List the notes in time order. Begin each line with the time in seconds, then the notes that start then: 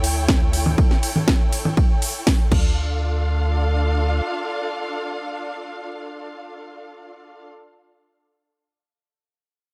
Already playing: D2 E4 A4 C#5 G5
0.04 open hi-hat, ride
0.28 kick, snare, ride
0.53 open hi-hat, ride
0.66 low conga
0.78 kick, ride
0.91 snare
1.03 open hi-hat, ride
1.16 low conga
1.28 kick, snare, ride
1.52 open hi-hat, ride
1.65 low conga
1.77 kick, ride
2.02 open hi-hat, ride
2.27 kick, snare, open hi-hat, ride
2.52 D2 D4 F4 A4 F5, kick, crash